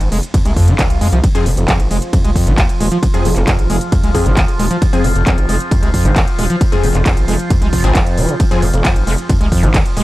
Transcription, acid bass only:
0.12 0.18 G#3 loud
0.34 0.38 F2 loud
0.45 0.51 G#3 medium
0.57 0.69 F2 medium
0.68 0.74 F3 medium
0.79 0.88 D#2 medium
1.01 1.07 G#3 loud
1.12 1.19 F3 medium
1.24 1.27 F2 loud
1.35 1.48 F2 medium
1.46 1.50 D#3 medium
1.57 1.63 F1 medium
1.68 1.78 F2 medium
1.91 1.97 G#3 loud
2.13 2.17 F2 loud
2.24 2.31 G#3 medium
2.36 2.48 F2 medium
2.47 2.53 F3 medium
2.58 2.67 D#2 medium
2.80 2.87 G#3 loud
2.92 2.98 F3 medium
3.03 3.06 F2 loud
3.14 3.27 F2 medium
3.25 3.29 D#3 medium
3.36 3.42 F1 medium
3.47 3.57 F2 medium
3.70 3.76 G#3 loud
3.92 3.96 F2 loud
4.03 4.10 G#3 medium
4.15 4.27 F2 medium
4.26 4.32 F3 medium
4.37 4.46 D#2 medium
4.59 4.66 G#3 loud
4.70 4.77 F3 medium
4.82 4.85 F2 loud
4.93 5.06 F2 medium
5.04 5.08 D#3 medium
5.15 5.21 F1 medium
5.27 5.36 F2 medium
5.49 5.55 G#3 loud
5.71 5.75 F2 loud
5.83 5.89 G#3 medium
5.94 6.06 F2 medium
6.05 6.11 F3 medium
6.16 6.25 D#2 medium
6.39 6.45 G#3 loud
6.50 6.56 F3 medium
6.61 6.65 F2 loud
6.72 6.85 F2 medium
6.83 6.87 D#3 medium
6.95 7.01 F1 medium
7.06 7.15 F2 medium
7.28 7.34 G#3 loud
7.51 7.54 F2 loud
7.62 7.68 G#3 medium
7.73 7.86 F1 medium
7.84 7.97 D#2 medium
7.95 8.19 F2 medium
8.18 8.30 F3 medium
8.29 8.35 C3 medium
8.40 8.44 F2 loud
8.51 8.64 F2 medium
8.62 8.66 D#3 medium
8.74 8.80 F1 medium
8.85 8.94 F2 medium
9.07 9.13 G#3 loud
9.30 9.33 F2 loud
9.41 9.47 G#3 medium
9.52 9.65 F2 medium
9.63 9.69 F3 medium
9.74 9.84 D#2 medium
9.97 10.03 G#3 loud

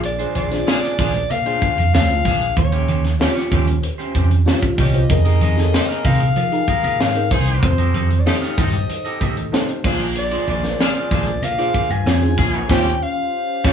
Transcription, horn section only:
0.67 0.77 D4 loud
0.67 0.77 F4 loud
0.67 0.77 G#4 loud
0.98 1.12 D4 medium
0.98 1.12 F4 medium
0.98 1.12 G#4 medium
2.26 2.46 D4 medium
2.26 2.46 F4 medium
2.26 2.46 G#4 loud
3.20 3.30 G3 medium
3.20 3.30 C#4 loud
3.20 3.30 G4 loud
3.52 3.65 G3 medium
3.52 3.65 C#4 medium
3.52 3.65 G4 medium
4.78 4.99 G3 medium
4.78 4.99 C#4 medium
4.78 4.99 G4 loud
5.74 5.84 C4 loud
5.74 5.83 D#4 medium
5.74 5.84 G4 loud
6.05 6.18 C4 medium
6.05 6.18 D#4 medium
6.05 6.18 G4 medium
7.32 7.72 C4 medium
7.32 7.72 D#4 medium
7.32 7.72 G#4 loud
8.26 8.36 C4 loud
8.26 8.36 D#4 loud
8.26 8.36 G4 loud
8.58 8.72 C4 medium
8.58 8.72 D#4 medium
8.58 8.72 G4 medium
9.85 10.05 D4 medium
9.85 10.05 F4 medium
9.85 10.05 G#4 loud
10.80 10.90 D4 loud
10.80 10.90 F4 loud
10.80 10.90 G#4 loud
11.12 11.25 D4 medium
11.12 11.25 F4 medium
11.12 11.25 G#4 medium
12.38 12.65 C#4 medium
12.38 12.65 F4 loud
12.38 12.65 G#4 loud
12.69 12.86 G3 loud
12.69 12.86 C#4 medium
12.69 12.86 G4 loud
13.65 13.73 G3 loud
13.65 13.73 C#4 loud
13.65 13.73 G4 loud

